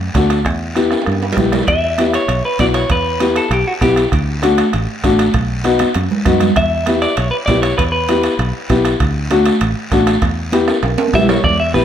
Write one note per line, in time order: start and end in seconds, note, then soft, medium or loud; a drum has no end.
0.15 0.45 D2 medium
0.15 0.36 A3 medium
0.15 0.36 D4 medium
0.15 0.37 F#4 medium
0.15 bombo low medium
0.15 bombo rim medium
0.15 high conga medium
0.15 high timbale medium
0.15 low timbale medium
0.15 short guiro medium
0.30 bombo rim medium
0.30 high timbale medium
0.30 short guiro medium
0.45 0.94 E2 medium
0.45 bombo low medium
0.45 bombo rim medium
0.45 high timbale medium
0.45 long guiro medium
0.75 0.97 B3 medium
0.75 0.97 E4 medium
0.75 0.98 G4 medium
0.75 bombo rim medium
0.75 high conga medium
0.75 high timbale medium
0.75 short guiro medium
0.91 bombo rim medium
0.91 high timbale medium
0.91 short guiro medium
1.02 high timbale medium
1.06 1.31 G2 medium
1.06 bombo rim medium
1.06 high conga medium
1.06 long guiro medium
1.12 high timbale medium
1.22 high timbale medium
1.33 1.58 B3 medium
1.33 low timbale medium
1.37 1.62 B1 medium
1.37 1.58 E4 medium
1.37 1.59 G4 medium
1.37 bombo low medium
1.37 bombo rim medium
1.37 low conga medium
1.37 short guiro medium
1.52 bombo rim medium
1.52 low conga medium
1.52 low timbale medium
1.52 short guiro medium
1.63 low timbale medium
1.68 2.17 E2 medium
1.68 2.15 E5 loud
1.68 bombo low medium
1.68 bombo rim medium
1.68 high timbale medium
1.68 long guiro medium
1.98 2.20 B3 medium
1.98 2.20 E4 medium
1.98 2.20 G4 medium
1.98 bombo rim medium
1.98 high conga medium
1.98 high timbale medium
1.98 short guiro medium
2.13 2.45 C#5 medium
2.13 bombo rim medium
2.13 high timbale medium
2.13 short guiro medium
2.28 2.41 B1 medium
2.28 bombo rim medium
2.28 high conga soft
2.28 high timbale medium
2.28 long guiro medium
2.45 2.59 B4 medium
2.59 2.84 B1 medium
2.59 2.81 B3 medium
2.59 2.81 E4 medium
2.59 2.81 F#4 medium
2.59 2.65 D5 medium
2.59 bombo low medium
2.59 bombo rim medium
2.59 high conga medium
2.59 high timbale medium
2.59 short guiro medium
2.74 2.89 C#5 medium
2.74 bombo rim medium
2.74 high timbale medium
2.74 short guiro medium
2.90 3.39 E2 medium
2.90 3.38 B4 medium
2.90 bombo low medium
2.90 bombo rim medium
2.90 high conga soft
2.90 high timbale medium
2.90 long guiro medium
3.20 3.42 B3 medium
3.20 3.42 E4 medium
3.20 3.42 G4 medium
3.20 bombo rim medium
3.20 high conga medium
3.20 high timbale medium
3.20 short guiro medium
3.36 3.51 A4 medium
3.36 bombo rim medium
3.36 high timbale medium
3.36 short guiro medium
3.51 3.63 B1 loud
3.51 3.66 G4 medium
3.51 bombo rim medium
3.51 high conga soft
3.51 high timbale medium
3.51 long guiro medium
3.67 3.72 F#4 medium
3.81 4.06 B1 medium
3.81 4.03 B3 medium
3.81 4.03 E4 medium
3.81 4.03 G4 medium
3.81 bombo low medium
3.81 bombo rim medium
3.81 high conga medium
3.81 high timbale medium
3.81 short guiro medium
3.96 bombo rim medium
3.96 high timbale medium
3.96 short guiro medium
4.12 4.61 D2 medium
4.12 bombo low medium
4.12 bombo rim medium
4.12 high conga soft
4.12 high timbale medium
4.12 long guiro medium
4.42 4.64 A3 medium
4.42 4.64 D4 medium
4.42 4.64 F#4 loud
4.42 bombo rim medium
4.42 high conga medium
4.42 high timbale medium
4.42 short guiro medium
4.58 bombo rim medium
4.58 high timbale medium
4.58 short guiro medium
4.73 4.86 A1 loud
4.73 bombo rim medium
4.73 high conga soft
4.73 high timbale medium
4.73 long guiro medium
5.04 5.28 A1 medium
5.04 5.25 A3 medium
5.04 5.25 D4 medium
5.04 5.25 F#4 medium
5.04 bombo low medium
5.04 bombo rim medium
5.04 high conga medium
5.04 high timbale medium
5.04 short guiro medium
5.19 bombo rim medium
5.19 high timbale medium
5.19 short guiro medium
5.34 5.83 B1 medium
5.34 bombo low medium
5.34 bombo rim medium
5.34 high timbale medium
5.34 long guiro medium
5.64 5.86 B3 medium
5.64 5.86 D#4 medium
5.64 5.86 F#4 loud
5.64 bombo rim medium
5.64 high conga medium
5.64 high timbale medium
5.64 short guiro medium
5.79 bombo rim medium
5.79 high conga medium
5.79 high timbale medium
5.79 short guiro medium
5.94 6.08 F#2 loud
5.94 bombo rim medium
5.94 high conga medium
5.94 high timbale medium
5.94 long guiro medium
6.11 low conga medium
6.25 6.50 F#2 medium
6.25 6.47 B3 medium
6.25 6.47 D#4 medium
6.25 6.47 F#4 medium
6.25 bombo low medium
6.25 bombo rim medium
6.25 low conga medium
6.25 high timbale medium
6.25 short guiro medium
6.40 bombo rim medium
6.40 low conga medium
6.40 high timbale medium
6.40 short guiro medium
6.56 7.05 E2 medium
6.56 6.99 E5 loud
6.56 bombo low medium
6.56 bombo rim medium
6.56 high timbale medium
6.56 long guiro medium
6.86 7.08 B3 medium
6.86 7.08 E4 medium
6.86 7.09 G4 medium
6.86 bombo rim medium
6.86 high conga medium
6.86 high timbale medium
6.86 short guiro medium
7.02 7.16 D5 medium
7.02 bombo rim medium
7.02 high timbale medium
7.02 short guiro medium
7.16 7.30 B1 loud
7.16 7.31 C#5 medium
7.16 bombo rim medium
7.16 high conga soft
7.16 high timbale medium
7.16 long guiro medium
7.31 7.36 B4 medium
7.46 7.72 B1 medium
7.46 7.69 B3 medium
7.46 7.69 E4 medium
7.46 7.70 G4 medium
7.46 7.61 D5 medium
7.46 bombo low medium
7.46 bombo rim medium
7.46 high conga medium
7.46 high timbale medium
7.46 low timbale medium
7.46 short guiro medium
7.62 7.77 C#5 medium
7.62 bombo rim medium
7.62 high timbale medium
7.62 short guiro medium
7.78 8.27 E2 medium
7.78 7.83 B4 medium
7.78 bombo low medium
7.78 bombo rim medium
7.78 high conga soft
7.78 high timbale medium
7.78 long guiro medium
7.92 8.35 B4 medium
8.09 8.30 B3 medium
8.09 8.30 E4 medium
8.09 8.31 G4 medium
8.09 bombo rim medium
8.09 high conga medium
8.09 high timbale medium
8.09 short guiro medium
8.23 bombo rim medium
8.23 high timbale medium
8.23 short guiro medium
8.39 8.51 B1 loud
8.39 bombo rim medium
8.39 high conga soft
8.39 high timbale medium
8.39 long guiro medium
8.70 8.94 B1 medium
8.70 8.91 B3 medium
8.70 8.91 E4 medium
8.70 8.91 G4 medium
8.70 bombo low medium
8.70 bombo rim medium
8.70 high conga medium
8.70 high timbale medium
8.70 short guiro medium
8.85 bombo rim medium
8.85 high timbale medium
8.85 short guiro medium
9.00 9.49 D2 medium
9.00 bombo low medium
9.00 bombo rim medium
9.00 high conga soft
9.00 high timbale medium
9.00 long guiro medium
9.30 9.52 A3 medium
9.30 9.52 D4 medium
9.30 9.52 F#4 loud
9.30 bombo rim medium
9.30 high conga medium
9.30 high timbale medium
9.30 short guiro medium
9.46 bombo rim medium
9.46 high timbale medium
9.46 short guiro medium
9.61 9.73 A1 medium
9.61 bombo rim medium
9.61 high conga soft
9.61 high timbale medium
9.61 long guiro medium
9.91 10.16 A1 medium
9.91 10.13 A3 medium
9.91 10.13 D4 medium
9.91 10.14 F#4 medium
9.91 bombo low medium
9.91 bombo rim medium
9.91 high conga medium
9.91 high timbale medium
9.91 short guiro medium
10.07 bombo rim medium
10.07 high timbale medium
10.07 short guiro medium
10.22 10.71 E2 medium
10.22 bombo low medium
10.22 bombo rim medium
10.22 high conga soft
10.22 high timbale medium
10.22 long guiro medium
10.52 10.74 B3 medium
10.52 10.74 E4 medium
10.52 10.74 G4 medium
10.52 bombo rim medium
10.52 high conga medium
10.52 high timbale medium
10.52 short guiro medium
10.68 bombo rim medium
10.68 high timbale medium
10.68 short guiro medium
10.83 10.95 B1 medium
10.83 bombo rim medium
10.83 high timbale medium
10.83 long guiro medium
10.98 high conga medium
10.98 high timbale medium
11.08 high conga medium
11.13 11.38 B1 medium
11.13 11.35 B3 medium
11.13 11.35 E4 medium
11.13 11.35 G4 medium
11.13 11.29 E5 loud
11.13 bombo low medium
11.13 bombo rim medium
11.13 low timbale medium
11.13 short guiro medium
11.18 low conga loud
11.28 11.43 C#5 medium
11.28 bombo rim medium
11.28 low conga medium
11.28 low timbale loud
11.28 short guiro medium
11.44 11.76 E2 loud
11.44 11.58 D5 loud
11.44 bombo low medium
11.44 bombo rim medium
11.44 high conga soft
11.44 low conga medium
11.44 long guiro medium
11.60 11.74 E5 medium
11.74 11.85 B1 medium
11.74 11.85 B3 medium
11.74 11.85 E4 medium
11.74 11.85 G4 medium
11.74 11.85 B4 medium
11.74 bombo rim medium
11.74 high conga medium
11.74 short guiro medium